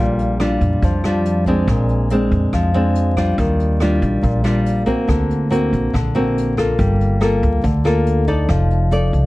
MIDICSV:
0, 0, Header, 1, 4, 480
1, 0, Start_track
1, 0, Key_signature, -2, "major"
1, 0, Tempo, 426136
1, 1896, Time_signature, 4, 2, 24, 8
1, 10430, End_track
2, 0, Start_track
2, 0, Title_t, "Nylon-string guitar"
2, 0, Program_c, 0, 24
2, 0, Note_on_c, 0, 46, 52
2, 0, Note_on_c, 0, 55, 56
2, 0, Note_on_c, 0, 62, 53
2, 0, Note_on_c, 0, 65, 59
2, 438, Note_off_c, 0, 55, 0
2, 440, Note_off_c, 0, 62, 0
2, 440, Note_off_c, 0, 65, 0
2, 451, Note_on_c, 0, 55, 51
2, 458, Note_on_c, 0, 62, 55
2, 459, Note_on_c, 0, 65, 54
2, 911, Note_off_c, 0, 46, 0
2, 944, Note_on_c, 0, 53, 50
2, 1135, Note_off_c, 0, 55, 0
2, 1138, Note_off_c, 0, 65, 0
2, 1139, Note_off_c, 0, 62, 0
2, 1182, Note_on_c, 0, 55, 56
2, 1188, Note_on_c, 0, 62, 61
2, 1190, Note_on_c, 0, 65, 54
2, 1621, Note_off_c, 0, 55, 0
2, 1622, Note_off_c, 0, 62, 0
2, 1625, Note_off_c, 0, 65, 0
2, 1660, Note_on_c, 0, 56, 62
2, 1664, Note_on_c, 0, 60, 57
2, 1670, Note_on_c, 0, 62, 58
2, 1876, Note_off_c, 0, 53, 0
2, 1903, Note_on_c, 0, 46, 51
2, 2339, Note_off_c, 0, 56, 0
2, 2342, Note_off_c, 0, 60, 0
2, 2344, Note_off_c, 0, 62, 0
2, 2378, Note_on_c, 0, 56, 51
2, 2382, Note_on_c, 0, 60, 54
2, 2386, Note_on_c, 0, 62, 59
2, 2835, Note_off_c, 0, 46, 0
2, 2855, Note_on_c, 0, 53, 53
2, 3058, Note_off_c, 0, 56, 0
2, 3061, Note_off_c, 0, 60, 0
2, 3062, Note_off_c, 0, 62, 0
2, 3090, Note_on_c, 0, 56, 60
2, 3095, Note_on_c, 0, 60, 59
2, 3102, Note_on_c, 0, 62, 65
2, 3535, Note_off_c, 0, 56, 0
2, 3538, Note_off_c, 0, 60, 0
2, 3540, Note_off_c, 0, 62, 0
2, 3572, Note_on_c, 0, 55, 58
2, 3579, Note_on_c, 0, 62, 52
2, 3584, Note_on_c, 0, 65, 61
2, 3791, Note_off_c, 0, 53, 0
2, 3819, Note_on_c, 0, 51, 53
2, 4256, Note_off_c, 0, 55, 0
2, 4259, Note_off_c, 0, 62, 0
2, 4261, Note_off_c, 0, 65, 0
2, 4294, Note_on_c, 0, 55, 54
2, 4298, Note_on_c, 0, 62, 54
2, 4304, Note_on_c, 0, 65, 55
2, 4754, Note_off_c, 0, 51, 0
2, 4760, Note_on_c, 0, 46, 49
2, 4977, Note_off_c, 0, 55, 0
2, 4977, Note_off_c, 0, 62, 0
2, 4982, Note_off_c, 0, 65, 0
2, 5001, Note_on_c, 0, 55, 59
2, 5005, Note_on_c, 0, 62, 64
2, 5008, Note_on_c, 0, 65, 59
2, 5450, Note_off_c, 0, 55, 0
2, 5452, Note_off_c, 0, 62, 0
2, 5453, Note_off_c, 0, 65, 0
2, 5475, Note_on_c, 0, 58, 58
2, 5481, Note_on_c, 0, 60, 56
2, 5487, Note_on_c, 0, 66, 61
2, 5704, Note_off_c, 0, 46, 0
2, 5718, Note_on_c, 0, 50, 52
2, 6167, Note_off_c, 0, 58, 0
2, 6170, Note_off_c, 0, 60, 0
2, 6173, Note_off_c, 0, 66, 0
2, 6200, Note_on_c, 0, 58, 52
2, 6204, Note_on_c, 0, 60, 53
2, 6213, Note_on_c, 0, 66, 62
2, 6663, Note_off_c, 0, 50, 0
2, 6684, Note_on_c, 0, 50, 52
2, 6686, Note_off_c, 0, 58, 0
2, 6688, Note_off_c, 0, 60, 0
2, 6690, Note_off_c, 0, 66, 0
2, 6925, Note_on_c, 0, 58, 57
2, 6934, Note_on_c, 0, 60, 56
2, 6934, Note_on_c, 0, 66, 60
2, 7373, Note_off_c, 0, 58, 0
2, 7375, Note_off_c, 0, 60, 0
2, 7377, Note_off_c, 0, 66, 0
2, 7404, Note_on_c, 0, 58, 55
2, 7412, Note_on_c, 0, 65, 52
2, 7415, Note_on_c, 0, 69, 54
2, 7626, Note_off_c, 0, 50, 0
2, 7643, Note_on_c, 0, 55, 51
2, 8092, Note_off_c, 0, 58, 0
2, 8096, Note_off_c, 0, 65, 0
2, 8096, Note_off_c, 0, 69, 0
2, 8118, Note_on_c, 0, 58, 54
2, 8125, Note_on_c, 0, 65, 51
2, 8131, Note_on_c, 0, 69, 59
2, 8586, Note_off_c, 0, 55, 0
2, 8599, Note_on_c, 0, 50, 47
2, 8604, Note_off_c, 0, 58, 0
2, 8608, Note_off_c, 0, 65, 0
2, 8610, Note_off_c, 0, 69, 0
2, 8839, Note_on_c, 0, 58, 56
2, 8841, Note_on_c, 0, 65, 58
2, 8847, Note_on_c, 0, 69, 60
2, 9289, Note_off_c, 0, 58, 0
2, 9289, Note_off_c, 0, 65, 0
2, 9293, Note_off_c, 0, 69, 0
2, 9323, Note_on_c, 0, 63, 58
2, 9326, Note_on_c, 0, 69, 60
2, 9330, Note_on_c, 0, 74, 63
2, 9544, Note_off_c, 0, 50, 0
2, 9565, Note_on_c, 0, 53, 52
2, 10011, Note_off_c, 0, 63, 0
2, 10012, Note_off_c, 0, 69, 0
2, 10014, Note_off_c, 0, 74, 0
2, 10040, Note_on_c, 0, 63, 52
2, 10048, Note_on_c, 0, 69, 57
2, 10055, Note_on_c, 0, 74, 63
2, 10430, Note_off_c, 0, 53, 0
2, 10430, Note_off_c, 0, 63, 0
2, 10430, Note_off_c, 0, 69, 0
2, 10430, Note_off_c, 0, 74, 0
2, 10430, End_track
3, 0, Start_track
3, 0, Title_t, "Upright bass"
3, 0, Program_c, 1, 32
3, 0, Note_on_c, 1, 34, 98
3, 647, Note_off_c, 1, 34, 0
3, 687, Note_on_c, 1, 41, 81
3, 914, Note_off_c, 1, 41, 0
3, 928, Note_on_c, 1, 41, 89
3, 1847, Note_off_c, 1, 41, 0
3, 1889, Note_on_c, 1, 34, 100
3, 2567, Note_off_c, 1, 34, 0
3, 2607, Note_on_c, 1, 41, 86
3, 2834, Note_off_c, 1, 41, 0
3, 2849, Note_on_c, 1, 41, 89
3, 3767, Note_off_c, 1, 41, 0
3, 3808, Note_on_c, 1, 39, 101
3, 4487, Note_off_c, 1, 39, 0
3, 4528, Note_on_c, 1, 34, 87
3, 4755, Note_off_c, 1, 34, 0
3, 4767, Note_on_c, 1, 34, 89
3, 5687, Note_off_c, 1, 34, 0
3, 5730, Note_on_c, 1, 38, 91
3, 6408, Note_off_c, 1, 38, 0
3, 6450, Note_on_c, 1, 34, 80
3, 6676, Note_off_c, 1, 34, 0
3, 6692, Note_on_c, 1, 34, 87
3, 7609, Note_off_c, 1, 34, 0
3, 7648, Note_on_c, 1, 31, 93
3, 8327, Note_off_c, 1, 31, 0
3, 8367, Note_on_c, 1, 38, 88
3, 8595, Note_off_c, 1, 38, 0
3, 8603, Note_on_c, 1, 38, 98
3, 9525, Note_off_c, 1, 38, 0
3, 9560, Note_on_c, 1, 29, 99
3, 10243, Note_off_c, 1, 29, 0
3, 10284, Note_on_c, 1, 36, 82
3, 10430, Note_off_c, 1, 36, 0
3, 10430, End_track
4, 0, Start_track
4, 0, Title_t, "Drums"
4, 211, Note_on_c, 9, 42, 24
4, 324, Note_off_c, 9, 42, 0
4, 448, Note_on_c, 9, 37, 60
4, 448, Note_on_c, 9, 42, 43
4, 561, Note_off_c, 9, 37, 0
4, 561, Note_off_c, 9, 42, 0
4, 687, Note_on_c, 9, 42, 26
4, 688, Note_on_c, 9, 36, 22
4, 800, Note_off_c, 9, 42, 0
4, 801, Note_off_c, 9, 36, 0
4, 929, Note_on_c, 9, 36, 56
4, 932, Note_on_c, 9, 42, 41
4, 1042, Note_off_c, 9, 36, 0
4, 1044, Note_off_c, 9, 42, 0
4, 1172, Note_on_c, 9, 37, 51
4, 1172, Note_on_c, 9, 42, 25
4, 1285, Note_off_c, 9, 37, 0
4, 1285, Note_off_c, 9, 42, 0
4, 1411, Note_on_c, 9, 42, 42
4, 1524, Note_off_c, 9, 42, 0
4, 1645, Note_on_c, 9, 42, 27
4, 1647, Note_on_c, 9, 36, 25
4, 1758, Note_off_c, 9, 42, 0
4, 1760, Note_off_c, 9, 36, 0
4, 1888, Note_on_c, 9, 36, 52
4, 1891, Note_on_c, 9, 37, 51
4, 1891, Note_on_c, 9, 42, 37
4, 2001, Note_off_c, 9, 36, 0
4, 2003, Note_off_c, 9, 37, 0
4, 2003, Note_off_c, 9, 42, 0
4, 2127, Note_on_c, 9, 42, 25
4, 2239, Note_off_c, 9, 42, 0
4, 2363, Note_on_c, 9, 42, 41
4, 2476, Note_off_c, 9, 42, 0
4, 2607, Note_on_c, 9, 42, 25
4, 2609, Note_on_c, 9, 36, 22
4, 2720, Note_off_c, 9, 42, 0
4, 2721, Note_off_c, 9, 36, 0
4, 2848, Note_on_c, 9, 37, 53
4, 2848, Note_on_c, 9, 42, 42
4, 2849, Note_on_c, 9, 36, 53
4, 2961, Note_off_c, 9, 37, 0
4, 2961, Note_off_c, 9, 42, 0
4, 2962, Note_off_c, 9, 36, 0
4, 3085, Note_on_c, 9, 42, 23
4, 3198, Note_off_c, 9, 42, 0
4, 3326, Note_on_c, 9, 42, 39
4, 3439, Note_off_c, 9, 42, 0
4, 3568, Note_on_c, 9, 36, 23
4, 3571, Note_on_c, 9, 37, 58
4, 3571, Note_on_c, 9, 42, 26
4, 3680, Note_off_c, 9, 36, 0
4, 3683, Note_off_c, 9, 37, 0
4, 3683, Note_off_c, 9, 42, 0
4, 3807, Note_on_c, 9, 42, 38
4, 3809, Note_on_c, 9, 36, 52
4, 3920, Note_off_c, 9, 42, 0
4, 3921, Note_off_c, 9, 36, 0
4, 4051, Note_on_c, 9, 42, 24
4, 4163, Note_off_c, 9, 42, 0
4, 4283, Note_on_c, 9, 37, 61
4, 4283, Note_on_c, 9, 42, 42
4, 4396, Note_off_c, 9, 37, 0
4, 4396, Note_off_c, 9, 42, 0
4, 4529, Note_on_c, 9, 36, 22
4, 4529, Note_on_c, 9, 42, 27
4, 4641, Note_off_c, 9, 36, 0
4, 4642, Note_off_c, 9, 42, 0
4, 4769, Note_on_c, 9, 42, 41
4, 4770, Note_on_c, 9, 36, 55
4, 4881, Note_off_c, 9, 42, 0
4, 4883, Note_off_c, 9, 36, 0
4, 5010, Note_on_c, 9, 37, 53
4, 5010, Note_on_c, 9, 42, 24
4, 5123, Note_off_c, 9, 37, 0
4, 5123, Note_off_c, 9, 42, 0
4, 5249, Note_on_c, 9, 42, 43
4, 5362, Note_off_c, 9, 42, 0
4, 5490, Note_on_c, 9, 36, 22
4, 5491, Note_on_c, 9, 42, 28
4, 5603, Note_off_c, 9, 36, 0
4, 5604, Note_off_c, 9, 42, 0
4, 5730, Note_on_c, 9, 36, 54
4, 5732, Note_on_c, 9, 37, 49
4, 5732, Note_on_c, 9, 42, 44
4, 5843, Note_off_c, 9, 36, 0
4, 5844, Note_off_c, 9, 37, 0
4, 5844, Note_off_c, 9, 42, 0
4, 5974, Note_on_c, 9, 42, 25
4, 6087, Note_off_c, 9, 42, 0
4, 6214, Note_on_c, 9, 42, 45
4, 6326, Note_off_c, 9, 42, 0
4, 6452, Note_on_c, 9, 36, 24
4, 6456, Note_on_c, 9, 42, 26
4, 6564, Note_off_c, 9, 36, 0
4, 6569, Note_off_c, 9, 42, 0
4, 6694, Note_on_c, 9, 36, 57
4, 6699, Note_on_c, 9, 37, 57
4, 6699, Note_on_c, 9, 42, 41
4, 6806, Note_off_c, 9, 36, 0
4, 6811, Note_off_c, 9, 37, 0
4, 6811, Note_off_c, 9, 42, 0
4, 6941, Note_on_c, 9, 42, 24
4, 7053, Note_off_c, 9, 42, 0
4, 7184, Note_on_c, 9, 42, 37
4, 7296, Note_off_c, 9, 42, 0
4, 7411, Note_on_c, 9, 36, 24
4, 7412, Note_on_c, 9, 37, 57
4, 7412, Note_on_c, 9, 42, 26
4, 7523, Note_off_c, 9, 36, 0
4, 7525, Note_off_c, 9, 37, 0
4, 7525, Note_off_c, 9, 42, 0
4, 7648, Note_on_c, 9, 36, 55
4, 7652, Note_on_c, 9, 42, 37
4, 7761, Note_off_c, 9, 36, 0
4, 7764, Note_off_c, 9, 42, 0
4, 7892, Note_on_c, 9, 42, 24
4, 8004, Note_off_c, 9, 42, 0
4, 8126, Note_on_c, 9, 37, 59
4, 8126, Note_on_c, 9, 42, 41
4, 8239, Note_off_c, 9, 37, 0
4, 8239, Note_off_c, 9, 42, 0
4, 8366, Note_on_c, 9, 36, 23
4, 8366, Note_on_c, 9, 42, 26
4, 8479, Note_off_c, 9, 36, 0
4, 8479, Note_off_c, 9, 42, 0
4, 8603, Note_on_c, 9, 42, 40
4, 8605, Note_on_c, 9, 36, 55
4, 8716, Note_off_c, 9, 42, 0
4, 8718, Note_off_c, 9, 36, 0
4, 8847, Note_on_c, 9, 37, 54
4, 8847, Note_on_c, 9, 42, 24
4, 8960, Note_off_c, 9, 37, 0
4, 8960, Note_off_c, 9, 42, 0
4, 9084, Note_on_c, 9, 42, 40
4, 9197, Note_off_c, 9, 42, 0
4, 9324, Note_on_c, 9, 36, 22
4, 9327, Note_on_c, 9, 42, 28
4, 9437, Note_off_c, 9, 36, 0
4, 9440, Note_off_c, 9, 42, 0
4, 9561, Note_on_c, 9, 37, 53
4, 9561, Note_on_c, 9, 42, 38
4, 9563, Note_on_c, 9, 36, 58
4, 9674, Note_off_c, 9, 37, 0
4, 9674, Note_off_c, 9, 42, 0
4, 9676, Note_off_c, 9, 36, 0
4, 9803, Note_on_c, 9, 42, 25
4, 9916, Note_off_c, 9, 42, 0
4, 10043, Note_on_c, 9, 42, 44
4, 10155, Note_off_c, 9, 42, 0
4, 10287, Note_on_c, 9, 36, 23
4, 10290, Note_on_c, 9, 42, 27
4, 10399, Note_off_c, 9, 36, 0
4, 10403, Note_off_c, 9, 42, 0
4, 10430, End_track
0, 0, End_of_file